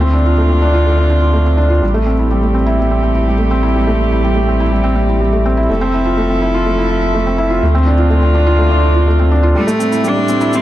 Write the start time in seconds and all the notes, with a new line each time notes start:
Already playing: D2 D3 C4 F4
0.01 C4
0.14 D4
0.26 F4
0.38 A3
0.50 C4
0.62 D4
0.74 F4
0.87 A3
0.98 D4
1.10 D4
1.22 F4
1.33 A3
1.46 C4
1.57 D4
1.70 F4
1.82 A1 G3 A3 C4 G4
1.94 A3
2.06 C4
2.19 E4
2.31 G3
2.43 A3
2.54 C4
2.66 E4
2.79 G3
2.91 C4
3.03 C4
3.15 E4
3.27 G3
3.38 A3
3.51 C4
3.63 E4
3.75 G3
3.87 A3
4.00 C4
4.12 E4
4.24 G3
4.36 A3
4.49 C4
4.60 E4
4.72 G3
4.84 C4
4.96 C4
5.09 E4
5.21 G3
5.33 A3
5.46 C4
5.57 E4
5.69 F1 F3 A3 A4 E5
5.81 C4
5.94 E4
6.05 F4
6.17 A3
6.29 C4
6.42 E4
6.54 F4
6.66 A3
6.79 E4
6.90 E4
7.03 F4
7.15 A3
7.27 C4
7.38 E4
7.50 F4
7.63 D2 D3 A3 C4 F4
7.75 C4
7.87 D4
7.99 F4
8.10 A3
8.23 C4
8.34 D4
8.46 F4
8.59 A3
8.71 D4
8.84 D4
8.96 F4
9.07 A3
9.20 C4
9.32 D4
9.43 F4
9.55 A2 C3 G3 A3
9.67 A3, shaker
9.79 C4, shaker
9.92 E4, shaker
10.04 G3, shaker
10.08 D4
10.16 A3
10.28 C4, shaker
10.41 E4, shaker
10.53 G3 C4, shaker